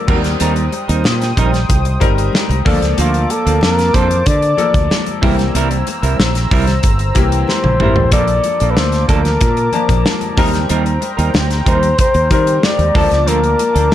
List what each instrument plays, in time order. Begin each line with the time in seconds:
Already playing: grand piano F3 A#3
0.07 fretless electric bass D#2, grand piano F#3 C4 D#4 A#4, clean electric guitar G3 C4 D#4 A#4, analog synth pad C5 G5 D#6, kick, crash, high conga
0.13 grand piano G3
0.24 muted clean electric guitar stroke, snare, closed hi-hat
0.40 fretless electric bass D#2, clean electric guitar G3 C4 D#4 A#4, closed hi-hat, muted conga
0.56 muted clean electric guitar stroke, closed hi-hat
0.72 muted clean electric guitar stroke, closed hi-hat, muted conga
0.88 fretless electric bass D#2, clean electric guitar G3 C4 D#4 A#4, closed hi-hat
1.04 fretless electric bass A#2, snare, high conga
1.21 muted clean electric guitar stroke, snare, closed hi-hat
1.37 fretless electric bass A#1, clean electric guitar G3 C4 D#4 A#4, kick, closed hi-hat
1.53 muted clean electric guitar stroke, snare, closed hi-hat, low conga
1.69 fretless electric bass C2, muted clean electric guitar stroke, kick, closed hi-hat, muted conga, low conga
1.85 muted clean electric guitar stroke, closed hi-hat
2.00 fretless electric bass G1, grand piano G3 C4 D#4 A#4, kick, closed hi-hat, muted conga
2.18 muted clean electric guitar stroke, closed hi-hat
2.33 snare, high conga
2.49 fretless electric bass C2, muted clean electric guitar stroke, closed hi-hat, high conga
2.65 fretless electric bass D2, grand piano F3 A#3 D4 A4, clean electric guitar F3 A#3 D4 A4, analog synth pad A#3 A5 D6, kick, open hi-hat, high conga
2.82 fretless electric bass C#2, muted clean electric guitar stroke, snare, closed hi-hat
2.98 fretless electric bass D2, clean electric guitar F3 A#3 D4 A4, flugelhorn F4, closed hi-hat, muted conga
3.14 muted clean electric guitar stroke, closed hi-hat
3.29 flugelhorn A4, muted clean electric guitar stroke, closed hi-hat, muted conga
3.45 fretless electric bass D2, clean electric guitar F3 A#3 D4 A4, closed hi-hat
3.61 fretless electric bass F2, flugelhorn A#4, muted clean electric guitar stroke, snare, high conga
3.78 muted clean electric guitar stroke, snare, closed hi-hat
3.94 fretless electric bass F2, clean electric guitar F3 A#3 D4 A4, flugelhorn C5, kick, closed hi-hat
4.10 muted clean electric guitar stroke, closed hi-hat, low conga
4.26 fretless electric bass D3, flugelhorn D5, muted clean electric guitar stroke, kick, closed hi-hat, muted conga
4.42 muted clean electric guitar stroke, closed hi-hat
4.57 grand piano F3 A#3 D4 A4, closed hi-hat, muted conga, low conga
4.74 fretless electric bass D2, muted clean electric guitar stroke, kick, closed hi-hat
4.91 snare, high conga
5.06 muted clean electric guitar stroke, closed hi-hat, high conga
5.21 fretless electric bass C2, grand piano E3 A#3 C4 G4, clean electric guitar G3 C4 E4 A#4, analog synth pad C5 A#5 E6, kick, open hi-hat, high conga
5.38 muted clean electric guitar stroke, snare, closed hi-hat
5.55 fretless electric bass C2, clean electric guitar G3 C4 E4 A#4, closed hi-hat, muted conga
5.71 muted clean electric guitar stroke, closed hi-hat
5.87 muted clean electric guitar stroke, closed hi-hat, muted conga
6.02 fretless electric bass C2, clean electric guitar G3 C4 E4 A#4, closed hi-hat
6.19 fretless electric bass A#1, muted clean electric guitar stroke, snare, high conga
6.35 muted clean electric guitar stroke, snare, closed hi-hat
6.51 fretless electric bass C2, clean electric guitar G3 C4 E4 A#4, kick, open hi-hat
6.67 muted clean electric guitar stroke, snare, closed hi-hat, low conga
6.83 fretless electric bass G1, muted clean electric guitar stroke, kick, closed hi-hat, muted conga, low conga
6.99 muted clean electric guitar stroke, closed hi-hat
7.15 fretless electric bass C2, grand piano E3 A#3 C4 G4, kick, closed hi-hat, muted conga
7.32 muted clean electric guitar stroke, closed hi-hat
7.48 flugelhorn C5, snare, high conga
7.64 fretless electric bass A#1, muted clean electric guitar stroke, high tom, high conga
7.79 fretless electric bass G#1, grand piano E3 A#3 C4 G4, clean electric guitar G3 C4 E4 A#4, mid tom, high conga
7.96 fretless electric bass A1, muted clean electric guitar stroke, floor tom
8.11 fretless electric bass A#1, grand piano F3 A#3 D4 A4, clean electric guitar F3 A#3 D4 A4, analog synth pad A#3 A5 D6, flugelhorn D5, kick, closed hi-hat, muted conga
8.28 muted clean electric guitar stroke, closed hi-hat
8.44 muted clean electric guitar stroke, closed hi-hat, muted conga
8.60 fretless electric bass A#1, clean electric guitar F3 A#3 D4 A4, closed hi-hat
8.71 flugelhorn B4
8.77 fretless electric bass D2, flugelhorn C5, muted clean electric guitar stroke, snare, high conga
8.92 muted clean electric guitar stroke, snare, closed hi-hat
9.08 fretless electric bass D2, clean electric guitar F3 A#3 D4 A4, flugelhorn A#4, kick, closed hi-hat
9.24 muted clean electric guitar stroke, snare, closed hi-hat, low conga
9.40 fretless electric bass A#2, muted clean electric guitar stroke, kick, closed hi-hat, muted conga
9.57 muted clean electric guitar stroke, closed hi-hat
9.72 grand piano F3 A#3 D4 A5, closed hi-hat, muted conga, low conga
9.89 fretless electric bass A#1, muted clean electric guitar stroke, kick, closed hi-hat
10.05 snare, high conga
10.21 muted clean electric guitar stroke, closed hi-hat, high conga
10.37 fretless electric bass D#2, clean electric guitar G3 C4 D#4 A#4, grand piano G3 C4 D#4 A#4, analog synth pad C5 G5 A#5, kick, open hi-hat, high conga
10.53 muted clean electric guitar stroke, snare, closed hi-hat
10.69 fretless electric bass D#2, clean electric guitar G3 C4 D#4 A#4, closed hi-hat, muted conga
10.86 muted clean electric guitar stroke, closed hi-hat
11.01 muted clean electric guitar stroke, closed hi-hat, muted conga
11.17 fretless electric bass D#2, clean electric guitar G3 C4 D#4 A#4, closed hi-hat
11.34 fretless electric bass D2, muted clean electric guitar stroke, snare, high conga
11.50 muted clean electric guitar stroke, snare, closed hi-hat
11.66 fretless electric bass D#2, clean electric guitar G3 C4 D#4 A#4, flugelhorn C5, kick, closed hi-hat
11.82 muted clean electric guitar stroke, closed hi-hat, low conga
11.98 flugelhorn C5, muted clean electric guitar stroke, kick, closed hi-hat, muted conga, low conga
12.14 fretless electric bass D#2, muted clean electric guitar stroke, closed hi-hat
12.30 fretless electric bass D#3, grand piano G3 C4 D#4 A#4, flugelhorn C5, kick, closed hi-hat
12.46 muted clean electric guitar stroke, closed hi-hat
12.63 flugelhorn D5, snare, high conga
12.78 fretless electric bass D#2, muted clean electric guitar stroke, closed hi-hat, high conga
12.94 fretless electric bass D2, clean electric guitar F3 A#3 D4 A4, grand piano F3 A#3 D4 A5, analog synth pad A#3 A5 D6, kick, open hi-hat, high conga
13.11 fretless electric bass C#2, muted clean electric guitar stroke, snare, closed hi-hat
13.26 fretless electric bass D2, clean electric guitar F3 A#3 D4 A4, flugelhorn A#4, closed hi-hat, muted conga
13.42 muted clean electric guitar stroke, closed hi-hat
13.59 muted clean electric guitar stroke, closed hi-hat, muted conga
13.74 fretless electric bass D2, clean electric guitar F3 A#3 D4 A4, closed hi-hat
13.91 muted clean electric guitar stroke